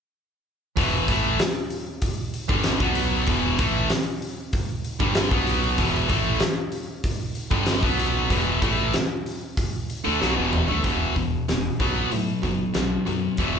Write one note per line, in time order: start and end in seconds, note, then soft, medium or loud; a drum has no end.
0.77 1.06 E1 medium
0.77 1.07 E2 medium
0.77 1.08 B2 loud
0.77 1.08 E3 medium
0.77 kick loud
0.77 open hi-hat medium
1.08 1.37 A1 medium
1.08 1.39 A2 medium
1.08 1.39 E3 medium
1.08 1.40 A3 medium
1.08 kick loud
1.08 open hi-hat medium
1.39 snare loud
1.39 open hi-hat medium
1.70 open hi-hat medium
2.02 kick medium
2.02 open hi-hat medium
2.34 open hi-hat medium
2.49 2.79 G1 medium
2.49 2.80 G2 loud
2.49 2.80 D3 loud
2.49 2.80 G3 medium
2.49 kick loud
2.64 snare loud
2.64 open hi-hat medium
2.80 3.25 B1 medium
2.80 3.27 B2 medium
2.80 3.28 F#3 medium
2.80 3.28 B3 medium
2.80 kick loud
2.95 open hi-hat medium
3.27 3.57 E1 loud
3.27 3.59 E2 loud
3.27 3.59 B2 loud
3.27 3.58 E3 loud
3.27 kick loud
3.27 open hi-hat medium
3.59 3.89 A1 medium
3.59 3.90 A2 medium
3.59 3.90 E3 loud
3.59 3.90 A3 medium
3.59 kick loud
3.59 open hi-hat medium
3.90 snare loud
3.90 open hi-hat medium
4.22 open hi-hat medium
4.53 kick loud
4.53 open hi-hat medium
4.84 open hi-hat medium
5.00 5.30 G1 medium
5.00 5.31 G2 medium
5.00 5.31 D3 loud
5.00 5.32 G3 loud
5.00 kick loud
5.15 snare loud
5.15 open hi-hat medium
5.31 5.76 B1 medium
5.31 5.77 B2 medium
5.31 5.78 F#3 medium
5.31 5.79 B3 loud
5.31 kick loud
5.47 open hi-hat medium
5.78 6.08 E1 loud
5.78 6.09 E2 medium
5.78 6.08 B2 loud
5.78 6.08 E3 loud
5.78 kick loud
5.78 open hi-hat medium
6.08 6.40 A1 medium
6.08 6.40 A2 medium
6.08 6.41 E3 medium
6.08 6.41 A3 loud
6.08 kick loud
6.08 open hi-hat medium
6.40 snare loud
6.40 open hi-hat medium
6.72 open hi-hat medium
7.04 kick medium
7.04 open hi-hat medium
7.35 open hi-hat medium
7.51 7.81 G1 medium
7.51 7.82 G2 medium
7.51 7.83 D3 medium
7.51 7.83 G3 loud
7.51 kick loud
7.66 snare loud
7.66 open hi-hat medium
7.83 8.27 B1 medium
7.83 8.30 B2 medium
7.83 8.30 F#3 medium
7.83 8.30 B3 loud
7.83 kick loud
7.99 open hi-hat medium
8.30 8.60 E1 medium
8.30 8.62 E2 medium
8.30 8.62 B2 loud
8.30 8.61 E3 medium
8.30 kick loud
8.30 open hi-hat medium
8.62 8.92 A1 medium
8.62 8.93 A2 medium
8.62 8.93 E3 medium
8.62 8.94 A3 loud
8.62 kick loud
8.62 open hi-hat medium
8.94 snare loud
8.94 open hi-hat medium
9.26 open hi-hat medium
9.57 kick loud
9.57 open hi-hat medium
9.90 open hi-hat medium
10.05 10.21 D2 medium
10.05 10.20 D3 medium
10.05 10.20 A3 medium
10.21 10.37 B1 medium
10.21 10.36 B2 medium
10.21 10.36 F#3 loud
10.21 snare medium
10.36 10.67 E1 medium
10.36 10.67 E2 medium
10.36 10.67 B2 medium
10.36 10.68 E3 medium
10.53 mid tom medium
10.68 10.86 D2 medium
10.68 10.83 D3 medium
10.68 10.84 A3 medium
10.68 floor tom medium
10.83 11.05 E1 medium
10.83 11.14 E2 medium
10.83 11.14 B2 medium
10.83 11.14 E3 medium
10.83 kick loud
10.83 open hi-hat medium
11.16 11.36 E1 medium
11.16 11.45 E2 medium
11.16 11.45 B2 medium
11.16 kick medium
11.16 open hi-hat soft
11.48 11.69 E1 medium
11.48 11.77 E2 medium
11.48 11.77 B2 medium
11.48 snare medium
11.48 open hi-hat medium
11.80 12.00 B1 medium
11.80 12.10 B2 medium
11.80 12.10 F#3 medium
11.80 12.10 B3 medium
11.80 kick medium
11.80 open hi-hat soft
12.12 12.32 A2 medium
12.12 12.41 B2 medium
12.12 12.41 F#3 medium
12.12 open hi-hat medium
12.43 12.63 F#1 medium
12.43 12.73 B2 medium
12.43 12.73 F#3 medium
12.43 kick medium
12.43 open hi-hat soft
12.74 12.95 B1 medium
12.74 13.04 B2 medium
12.74 13.04 F#3 medium
12.74 snare loud
12.74 open hi-hat medium
13.06 13.28 F#2 medium
13.06 13.36 B2 medium
13.06 13.36 F#3 medium
13.06 open hi-hat soft
13.37 13.59 E1 medium
13.37 13.59 E2 medium
13.37 13.59 B2 medium
13.37 13.59 E3 medium
13.37 kick medium
13.37 open hi-hat medium